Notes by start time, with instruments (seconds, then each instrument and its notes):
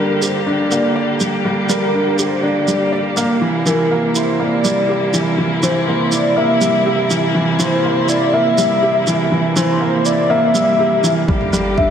Already playing: string quartet D3 G3 A#3 G4, felt piano G3 A#3 D4 G4 D5, soft synth lead A#4
0.22 felt piano G4, soft synth lead C5, shaker
0.46 felt piano D4, soft synth lead D5
0.71 felt piano A#3, shaker
0.96 felt piano D5
1.20 felt piano G3, shaker
1.45 felt piano G3
1.69 felt piano G3, soft synth lead A#4, shaker
1.94 felt piano D4
2.18 felt piano G4, soft synth lead C5, shaker
2.43 felt piano D4, soft synth lead D5
2.68 felt piano G3, shaker
2.92 felt piano D5
3.17 felt piano A#3, shaker
3.41 string quartet C3 E4, felt piano E3
3.66 felt piano E3, soft synth lead A#4, shaker
3.91 felt piano A#3
4.15 felt piano E4, soft synth lead C5, shaker
4.40 felt piano A#3, soft synth lead D5
4.64 felt piano G3, shaker
4.89 felt piano G4
5.13 felt piano E3, shaker
5.38 felt piano E3
5.63 felt piano E3, soft synth lead C5, shaker
5.87 felt piano A#3
6.12 felt piano E4, soft synth lead D5, shaker
6.36 felt piano A#3, soft synth lead E5
6.61 felt piano G3, shaker
6.86 felt piano G4
7.10 felt piano E3, shaker
7.35 felt piano E3
7.59 felt piano E3, soft synth lead C5, shaker
7.84 felt piano A#3
8.08 felt piano E4, soft synth lead D5, shaker
8.33 felt piano A#3, soft synth lead E5
8.58 felt piano G3, shaker
8.82 felt piano G4
9.07 felt piano E3, shaker
9.32 felt piano E3
9.56 felt piano E3, soft synth lead C5, shaker
9.80 felt piano A#3
10.05 felt piano E4, soft synth lead D5, shaker
10.30 felt piano A#3, soft synth lead E5
10.54 felt piano G3, shaker
10.79 felt piano G4
11.04 felt piano E3, shaker
11.16 analog synth bass A#1
11.28 analog synth bass G1, string quartet D3 G3 A#3 G4, felt piano G3, kick
11.41 mid tom
11.53 felt piano G3, shaker
11.77 felt piano D4, soft synth lead E5, kick, mid tom